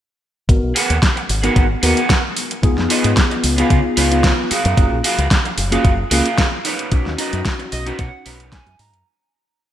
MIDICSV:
0, 0, Header, 1, 7, 480
1, 0, Start_track
1, 0, Tempo, 535714
1, 442, Time_signature, 4, 2, 24, 8
1, 8709, End_track
2, 0, Start_track
2, 0, Title_t, "Clean electric guitar"
2, 0, Program_c, 0, 27
2, 673, Note_on_c, 0, 68, 106
2, 677, Note_on_c, 0, 70, 95
2, 684, Note_on_c, 0, 71, 86
2, 687, Note_on_c, 0, 78, 119
2, 861, Note_off_c, 0, 68, 0
2, 864, Note_off_c, 0, 70, 0
2, 865, Note_off_c, 0, 71, 0
2, 868, Note_off_c, 0, 78, 0
2, 1281, Note_on_c, 0, 68, 91
2, 1286, Note_on_c, 0, 70, 74
2, 1292, Note_on_c, 0, 71, 75
2, 1296, Note_on_c, 0, 78, 97
2, 1461, Note_off_c, 0, 68, 0
2, 1464, Note_off_c, 0, 70, 0
2, 1466, Note_off_c, 0, 71, 0
2, 1469, Note_off_c, 0, 78, 0
2, 1635, Note_on_c, 0, 68, 104
2, 1642, Note_on_c, 0, 70, 87
2, 1644, Note_on_c, 0, 71, 102
2, 1649, Note_on_c, 0, 78, 121
2, 1943, Note_off_c, 0, 68, 0
2, 1945, Note_off_c, 0, 70, 0
2, 1946, Note_off_c, 0, 71, 0
2, 1949, Note_off_c, 0, 78, 0
2, 2595, Note_on_c, 0, 65, 111
2, 2600, Note_on_c, 0, 71, 91
2, 2604, Note_on_c, 0, 73, 100
2, 2609, Note_on_c, 0, 75, 115
2, 2783, Note_off_c, 0, 65, 0
2, 2784, Note_off_c, 0, 71, 0
2, 2787, Note_off_c, 0, 73, 0
2, 2789, Note_off_c, 0, 75, 0
2, 3205, Note_on_c, 0, 65, 87
2, 3210, Note_on_c, 0, 71, 82
2, 3215, Note_on_c, 0, 73, 81
2, 3218, Note_on_c, 0, 77, 98
2, 3383, Note_off_c, 0, 65, 0
2, 3386, Note_off_c, 0, 71, 0
2, 3388, Note_off_c, 0, 73, 0
2, 3390, Note_off_c, 0, 77, 0
2, 3555, Note_on_c, 0, 65, 112
2, 3560, Note_on_c, 0, 71, 101
2, 3564, Note_on_c, 0, 73, 99
2, 3568, Note_on_c, 0, 77, 117
2, 3862, Note_off_c, 0, 65, 0
2, 3864, Note_off_c, 0, 71, 0
2, 3867, Note_off_c, 0, 73, 0
2, 3869, Note_off_c, 0, 77, 0
2, 4037, Note_on_c, 0, 66, 92
2, 4041, Note_on_c, 0, 68, 83
2, 4045, Note_on_c, 0, 70, 79
2, 4053, Note_on_c, 0, 77, 91
2, 4429, Note_off_c, 0, 66, 0
2, 4431, Note_off_c, 0, 68, 0
2, 4434, Note_off_c, 0, 70, 0
2, 4436, Note_off_c, 0, 77, 0
2, 4517, Note_on_c, 0, 66, 114
2, 4522, Note_on_c, 0, 68, 104
2, 4526, Note_on_c, 0, 70, 98
2, 4530, Note_on_c, 0, 77, 120
2, 4703, Note_off_c, 0, 66, 0
2, 4706, Note_off_c, 0, 68, 0
2, 4708, Note_off_c, 0, 70, 0
2, 4710, Note_off_c, 0, 77, 0
2, 5122, Note_on_c, 0, 66, 90
2, 5125, Note_on_c, 0, 68, 84
2, 5132, Note_on_c, 0, 70, 77
2, 5135, Note_on_c, 0, 77, 98
2, 5302, Note_off_c, 0, 66, 0
2, 5305, Note_off_c, 0, 68, 0
2, 5306, Note_off_c, 0, 70, 0
2, 5309, Note_off_c, 0, 77, 0
2, 5473, Note_on_c, 0, 66, 113
2, 5479, Note_on_c, 0, 68, 96
2, 5482, Note_on_c, 0, 70, 101
2, 5485, Note_on_c, 0, 77, 127
2, 5781, Note_off_c, 0, 66, 0
2, 5783, Note_off_c, 0, 68, 0
2, 5785, Note_off_c, 0, 70, 0
2, 5787, Note_off_c, 0, 77, 0
2, 5956, Note_on_c, 0, 63, 98
2, 5961, Note_on_c, 0, 70, 90
2, 5965, Note_on_c, 0, 71, 84
2, 5970, Note_on_c, 0, 73, 104
2, 6349, Note_off_c, 0, 63, 0
2, 6351, Note_off_c, 0, 70, 0
2, 6353, Note_off_c, 0, 71, 0
2, 6356, Note_off_c, 0, 73, 0
2, 6434, Note_on_c, 0, 63, 108
2, 6441, Note_on_c, 0, 70, 94
2, 6444, Note_on_c, 0, 71, 107
2, 6449, Note_on_c, 0, 75, 121
2, 6622, Note_off_c, 0, 63, 0
2, 6624, Note_off_c, 0, 70, 0
2, 6627, Note_off_c, 0, 71, 0
2, 6629, Note_off_c, 0, 75, 0
2, 6922, Note_on_c, 0, 75, 77
2, 7041, Note_on_c, 0, 63, 91
2, 7049, Note_on_c, 0, 70, 78
2, 7050, Note_on_c, 0, 71, 86
2, 7054, Note_on_c, 0, 73, 99
2, 7145, Note_off_c, 0, 75, 0
2, 7161, Note_on_c, 0, 78, 75
2, 7222, Note_off_c, 0, 63, 0
2, 7224, Note_off_c, 0, 70, 0
2, 7226, Note_off_c, 0, 71, 0
2, 7228, Note_off_c, 0, 73, 0
2, 7394, Note_on_c, 0, 63, 108
2, 7400, Note_on_c, 0, 70, 103
2, 7405, Note_on_c, 0, 71, 96
2, 7409, Note_on_c, 0, 73, 124
2, 7608, Note_off_c, 0, 78, 0
2, 7643, Note_on_c, 0, 80, 76
2, 7702, Note_off_c, 0, 63, 0
2, 7704, Note_off_c, 0, 70, 0
2, 7707, Note_off_c, 0, 71, 0
2, 7709, Note_off_c, 0, 73, 0
2, 7866, Note_off_c, 0, 80, 0
2, 7882, Note_on_c, 0, 82, 80
2, 8105, Note_off_c, 0, 82, 0
2, 8709, End_track
3, 0, Start_track
3, 0, Title_t, "Tine electric piano"
3, 0, Program_c, 1, 4
3, 437, Note_on_c, 1, 59, 78
3, 442, Note_on_c, 1, 63, 72
3, 445, Note_on_c, 1, 66, 71
3, 447, Note_on_c, 1, 70, 85
3, 644, Note_off_c, 1, 59, 0
3, 646, Note_off_c, 1, 63, 0
3, 648, Note_off_c, 1, 66, 0
3, 649, Note_off_c, 1, 70, 0
3, 1283, Note_on_c, 1, 59, 89
3, 1286, Note_on_c, 1, 63, 85
3, 1288, Note_on_c, 1, 66, 79
3, 1293, Note_on_c, 1, 70, 97
3, 1486, Note_off_c, 1, 59, 0
3, 1487, Note_off_c, 1, 63, 0
3, 1488, Note_off_c, 1, 66, 0
3, 1491, Note_off_c, 1, 70, 0
3, 1637, Note_on_c, 1, 59, 101
3, 1639, Note_on_c, 1, 63, 95
3, 1643, Note_on_c, 1, 66, 92
3, 1646, Note_on_c, 1, 70, 108
3, 1773, Note_off_c, 1, 59, 0
3, 1774, Note_off_c, 1, 63, 0
3, 1776, Note_off_c, 1, 66, 0
3, 1777, Note_off_c, 1, 70, 0
3, 2352, Note_on_c, 1, 59, 101
3, 2358, Note_on_c, 1, 63, 94
3, 2364, Note_on_c, 1, 65, 88
3, 2370, Note_on_c, 1, 68, 114
3, 3174, Note_off_c, 1, 59, 0
3, 3177, Note_off_c, 1, 63, 0
3, 3180, Note_off_c, 1, 65, 0
3, 3183, Note_off_c, 1, 68, 0
3, 3205, Note_on_c, 1, 59, 87
3, 3208, Note_on_c, 1, 63, 80
3, 3210, Note_on_c, 1, 65, 79
3, 3215, Note_on_c, 1, 68, 94
3, 3657, Note_off_c, 1, 59, 0
3, 3658, Note_off_c, 1, 63, 0
3, 3659, Note_off_c, 1, 65, 0
3, 3661, Note_off_c, 1, 68, 0
3, 3687, Note_on_c, 1, 59, 87
3, 3689, Note_on_c, 1, 63, 78
3, 3692, Note_on_c, 1, 65, 78
3, 3695, Note_on_c, 1, 68, 88
3, 4027, Note_off_c, 1, 59, 0
3, 4028, Note_off_c, 1, 63, 0
3, 4029, Note_off_c, 1, 65, 0
3, 4031, Note_off_c, 1, 68, 0
3, 4275, Note_on_c, 1, 58, 82
3, 4277, Note_on_c, 1, 61, 77
3, 4282, Note_on_c, 1, 65, 75
3, 4284, Note_on_c, 1, 68, 91
3, 4482, Note_off_c, 1, 58, 0
3, 4483, Note_off_c, 1, 61, 0
3, 4486, Note_off_c, 1, 65, 0
3, 4487, Note_off_c, 1, 68, 0
3, 5119, Note_on_c, 1, 58, 99
3, 5122, Note_on_c, 1, 61, 83
3, 5124, Note_on_c, 1, 65, 83
3, 5128, Note_on_c, 1, 68, 107
3, 5324, Note_off_c, 1, 58, 0
3, 5325, Note_off_c, 1, 61, 0
3, 5326, Note_off_c, 1, 65, 0
3, 5328, Note_off_c, 1, 68, 0
3, 5473, Note_on_c, 1, 58, 102
3, 5477, Note_on_c, 1, 61, 96
3, 5480, Note_on_c, 1, 65, 94
3, 5482, Note_on_c, 1, 68, 113
3, 5611, Note_off_c, 1, 58, 0
3, 5613, Note_off_c, 1, 61, 0
3, 5614, Note_off_c, 1, 65, 0
3, 5615, Note_off_c, 1, 68, 0
3, 6196, Note_on_c, 1, 61, 97
3, 6203, Note_on_c, 1, 63, 96
3, 6207, Note_on_c, 1, 66, 109
3, 7016, Note_off_c, 1, 61, 0
3, 7019, Note_off_c, 1, 63, 0
3, 7021, Note_off_c, 1, 66, 0
3, 7043, Note_on_c, 1, 61, 83
3, 7046, Note_on_c, 1, 63, 85
3, 7049, Note_on_c, 1, 66, 93
3, 7495, Note_off_c, 1, 61, 0
3, 7497, Note_off_c, 1, 63, 0
3, 7499, Note_off_c, 1, 66, 0
3, 8709, End_track
4, 0, Start_track
4, 0, Title_t, "Fingered electric bass"
4, 0, Program_c, 2, 33
4, 439, Note_on_c, 2, 32, 95
4, 522, Note_off_c, 2, 32, 0
4, 567, Note_on_c, 2, 35, 82
4, 640, Note_off_c, 2, 35, 0
4, 806, Note_on_c, 2, 39, 81
4, 880, Note_off_c, 2, 39, 0
4, 1160, Note_on_c, 2, 32, 80
4, 1320, Note_off_c, 2, 32, 0
4, 1397, Note_on_c, 2, 32, 100
4, 1558, Note_off_c, 2, 32, 0
4, 1638, Note_on_c, 2, 39, 96
4, 1721, Note_off_c, 2, 39, 0
4, 2358, Note_on_c, 2, 37, 99
4, 2442, Note_off_c, 2, 37, 0
4, 2487, Note_on_c, 2, 41, 86
4, 2560, Note_off_c, 2, 41, 0
4, 2727, Note_on_c, 2, 44, 83
4, 2800, Note_off_c, 2, 44, 0
4, 3082, Note_on_c, 2, 37, 75
4, 3241, Note_off_c, 2, 37, 0
4, 3319, Note_on_c, 2, 49, 89
4, 3402, Note_off_c, 2, 49, 0
4, 3559, Note_on_c, 2, 37, 71
4, 3855, Note_off_c, 2, 37, 0
4, 4170, Note_on_c, 2, 42, 99
4, 4241, Note_off_c, 2, 42, 0
4, 4277, Note_on_c, 2, 30, 102
4, 4361, Note_off_c, 2, 30, 0
4, 4409, Note_on_c, 2, 34, 89
4, 4481, Note_off_c, 2, 34, 0
4, 4644, Note_on_c, 2, 37, 87
4, 4719, Note_off_c, 2, 37, 0
4, 4997, Note_on_c, 2, 30, 82
4, 5158, Note_off_c, 2, 30, 0
4, 5238, Note_on_c, 2, 30, 106
4, 5399, Note_off_c, 2, 30, 0
4, 5474, Note_on_c, 2, 37, 91
4, 5560, Note_off_c, 2, 37, 0
4, 6198, Note_on_c, 2, 35, 95
4, 6282, Note_off_c, 2, 35, 0
4, 6326, Note_on_c, 2, 39, 83
4, 6400, Note_off_c, 2, 39, 0
4, 6568, Note_on_c, 2, 42, 88
4, 6641, Note_off_c, 2, 42, 0
4, 6923, Note_on_c, 2, 35, 81
4, 7081, Note_off_c, 2, 35, 0
4, 7157, Note_on_c, 2, 47, 100
4, 7241, Note_off_c, 2, 47, 0
4, 7401, Note_on_c, 2, 35, 74
4, 7696, Note_off_c, 2, 35, 0
4, 7764, Note_on_c, 2, 42, 82
4, 7839, Note_off_c, 2, 42, 0
4, 7878, Note_on_c, 2, 44, 87
4, 8007, Note_off_c, 2, 44, 0
4, 8007, Note_on_c, 2, 42, 97
4, 8080, Note_off_c, 2, 42, 0
4, 8709, End_track
5, 0, Start_track
5, 0, Title_t, "Muted clean electric guitar strokes"
5, 1039, Note_on_c, 9, 29, 88
5, 1128, Note_off_c, 9, 29, 0
5, 1157, Note_on_c, 9, 29, 32
5, 1247, Note_off_c, 9, 29, 0
5, 2244, Note_on_c, 9, 29, 32
5, 2333, Note_off_c, 9, 29, 0
5, 2962, Note_on_c, 9, 29, 87
5, 3052, Note_off_c, 9, 29, 0
5, 3075, Note_on_c, 9, 29, 33
5, 3165, Note_off_c, 9, 29, 0
5, 4882, Note_on_c, 9, 29, 90
5, 4972, Note_off_c, 9, 29, 0
5, 4995, Note_on_c, 9, 29, 35
5, 5085, Note_off_c, 9, 29, 0
5, 6803, Note_on_c, 9, 29, 91
5, 6893, Note_off_c, 9, 29, 0
5, 6917, Note_on_c, 9, 29, 34
5, 7007, Note_off_c, 9, 29, 0
5, 8003, Note_on_c, 9, 29, 33
5, 8093, Note_off_c, 9, 29, 0
5, 8709, End_track
6, 0, Start_track
6, 0, Title_t, "Muted fingered electric bass strokes"
6, 4042, Note_on_c, 9, 29, 43
6, 4131, Note_off_c, 9, 29, 0
6, 8709, End_track
7, 0, Start_track
7, 0, Title_t, "Drums"
7, 438, Note_on_c, 9, 36, 122
7, 442, Note_on_c, 9, 42, 70
7, 528, Note_off_c, 9, 36, 0
7, 532, Note_off_c, 9, 42, 0
7, 680, Note_on_c, 9, 46, 111
7, 769, Note_off_c, 9, 46, 0
7, 808, Note_on_c, 9, 42, 56
7, 897, Note_off_c, 9, 42, 0
7, 918, Note_on_c, 9, 36, 104
7, 920, Note_on_c, 9, 42, 68
7, 921, Note_on_c, 9, 38, 118
7, 1008, Note_off_c, 9, 36, 0
7, 1009, Note_off_c, 9, 42, 0
7, 1010, Note_off_c, 9, 38, 0
7, 1049, Note_on_c, 9, 42, 38
7, 1139, Note_off_c, 9, 42, 0
7, 1160, Note_on_c, 9, 46, 99
7, 1249, Note_off_c, 9, 46, 0
7, 1286, Note_on_c, 9, 42, 53
7, 1376, Note_off_c, 9, 42, 0
7, 1399, Note_on_c, 9, 36, 118
7, 1399, Note_on_c, 9, 42, 69
7, 1488, Note_off_c, 9, 36, 0
7, 1489, Note_off_c, 9, 42, 0
7, 1638, Note_on_c, 9, 46, 108
7, 1728, Note_off_c, 9, 46, 0
7, 1766, Note_on_c, 9, 42, 54
7, 1856, Note_off_c, 9, 42, 0
7, 1879, Note_on_c, 9, 36, 105
7, 1881, Note_on_c, 9, 42, 74
7, 1882, Note_on_c, 9, 38, 123
7, 1968, Note_off_c, 9, 36, 0
7, 1970, Note_off_c, 9, 42, 0
7, 1971, Note_off_c, 9, 38, 0
7, 2119, Note_on_c, 9, 46, 106
7, 2209, Note_off_c, 9, 46, 0
7, 2249, Note_on_c, 9, 42, 57
7, 2339, Note_off_c, 9, 42, 0
7, 2359, Note_on_c, 9, 42, 66
7, 2360, Note_on_c, 9, 36, 122
7, 2449, Note_off_c, 9, 36, 0
7, 2449, Note_off_c, 9, 42, 0
7, 2488, Note_on_c, 9, 38, 37
7, 2577, Note_off_c, 9, 38, 0
7, 2599, Note_on_c, 9, 46, 114
7, 2689, Note_off_c, 9, 46, 0
7, 2727, Note_on_c, 9, 42, 53
7, 2816, Note_off_c, 9, 42, 0
7, 2838, Note_on_c, 9, 42, 68
7, 2839, Note_on_c, 9, 36, 109
7, 2839, Note_on_c, 9, 38, 125
7, 2927, Note_off_c, 9, 42, 0
7, 2928, Note_off_c, 9, 38, 0
7, 2929, Note_off_c, 9, 36, 0
7, 2969, Note_on_c, 9, 42, 38
7, 3058, Note_off_c, 9, 42, 0
7, 3079, Note_on_c, 9, 46, 112
7, 3168, Note_off_c, 9, 46, 0
7, 3209, Note_on_c, 9, 42, 52
7, 3299, Note_off_c, 9, 42, 0
7, 3319, Note_on_c, 9, 36, 120
7, 3319, Note_on_c, 9, 42, 71
7, 3408, Note_off_c, 9, 42, 0
7, 3409, Note_off_c, 9, 36, 0
7, 3557, Note_on_c, 9, 46, 109
7, 3647, Note_off_c, 9, 46, 0
7, 3688, Note_on_c, 9, 42, 54
7, 3778, Note_off_c, 9, 42, 0
7, 3798, Note_on_c, 9, 36, 107
7, 3798, Note_on_c, 9, 42, 70
7, 3799, Note_on_c, 9, 38, 127
7, 3887, Note_off_c, 9, 36, 0
7, 3888, Note_off_c, 9, 42, 0
7, 3889, Note_off_c, 9, 38, 0
7, 4040, Note_on_c, 9, 46, 117
7, 4130, Note_off_c, 9, 46, 0
7, 4166, Note_on_c, 9, 42, 55
7, 4256, Note_off_c, 9, 42, 0
7, 4278, Note_on_c, 9, 36, 127
7, 4279, Note_on_c, 9, 42, 65
7, 4367, Note_off_c, 9, 36, 0
7, 4369, Note_off_c, 9, 42, 0
7, 4519, Note_on_c, 9, 46, 114
7, 4608, Note_off_c, 9, 46, 0
7, 4646, Note_on_c, 9, 42, 51
7, 4736, Note_off_c, 9, 42, 0
7, 4758, Note_on_c, 9, 36, 104
7, 4759, Note_on_c, 9, 42, 63
7, 4760, Note_on_c, 9, 38, 124
7, 4848, Note_off_c, 9, 36, 0
7, 4848, Note_off_c, 9, 42, 0
7, 4849, Note_off_c, 9, 38, 0
7, 4887, Note_on_c, 9, 42, 36
7, 4977, Note_off_c, 9, 42, 0
7, 4996, Note_on_c, 9, 46, 111
7, 5086, Note_off_c, 9, 46, 0
7, 5127, Note_on_c, 9, 42, 51
7, 5216, Note_off_c, 9, 42, 0
7, 5238, Note_on_c, 9, 36, 121
7, 5238, Note_on_c, 9, 42, 66
7, 5328, Note_off_c, 9, 36, 0
7, 5328, Note_off_c, 9, 42, 0
7, 5476, Note_on_c, 9, 46, 117
7, 5566, Note_off_c, 9, 46, 0
7, 5605, Note_on_c, 9, 42, 52
7, 5695, Note_off_c, 9, 42, 0
7, 5718, Note_on_c, 9, 36, 110
7, 5719, Note_on_c, 9, 42, 69
7, 5720, Note_on_c, 9, 38, 127
7, 5808, Note_off_c, 9, 36, 0
7, 5809, Note_off_c, 9, 38, 0
7, 5809, Note_off_c, 9, 42, 0
7, 5957, Note_on_c, 9, 46, 114
7, 6046, Note_off_c, 9, 46, 0
7, 6085, Note_on_c, 9, 42, 54
7, 6175, Note_off_c, 9, 42, 0
7, 6197, Note_on_c, 9, 42, 63
7, 6198, Note_on_c, 9, 36, 123
7, 6286, Note_off_c, 9, 42, 0
7, 6288, Note_off_c, 9, 36, 0
7, 6327, Note_on_c, 9, 38, 35
7, 6416, Note_off_c, 9, 38, 0
7, 6437, Note_on_c, 9, 46, 115
7, 6527, Note_off_c, 9, 46, 0
7, 6567, Note_on_c, 9, 42, 54
7, 6657, Note_off_c, 9, 42, 0
7, 6679, Note_on_c, 9, 36, 107
7, 6679, Note_on_c, 9, 38, 117
7, 6679, Note_on_c, 9, 42, 61
7, 6768, Note_off_c, 9, 36, 0
7, 6768, Note_off_c, 9, 42, 0
7, 6769, Note_off_c, 9, 38, 0
7, 6806, Note_on_c, 9, 42, 35
7, 6895, Note_off_c, 9, 42, 0
7, 6918, Note_on_c, 9, 46, 105
7, 7008, Note_off_c, 9, 46, 0
7, 7047, Note_on_c, 9, 42, 48
7, 7137, Note_off_c, 9, 42, 0
7, 7157, Note_on_c, 9, 42, 65
7, 7159, Note_on_c, 9, 36, 126
7, 7247, Note_off_c, 9, 42, 0
7, 7249, Note_off_c, 9, 36, 0
7, 7398, Note_on_c, 9, 46, 109
7, 7488, Note_off_c, 9, 46, 0
7, 7527, Note_on_c, 9, 42, 53
7, 7617, Note_off_c, 9, 42, 0
7, 7637, Note_on_c, 9, 36, 116
7, 7638, Note_on_c, 9, 42, 69
7, 7639, Note_on_c, 9, 38, 119
7, 7727, Note_off_c, 9, 36, 0
7, 7728, Note_off_c, 9, 42, 0
7, 7729, Note_off_c, 9, 38, 0
7, 7765, Note_on_c, 9, 42, 34
7, 7855, Note_off_c, 9, 42, 0
7, 7878, Note_on_c, 9, 46, 112
7, 7968, Note_off_c, 9, 46, 0
7, 8006, Note_on_c, 9, 42, 52
7, 8096, Note_off_c, 9, 42, 0
7, 8709, End_track
0, 0, End_of_file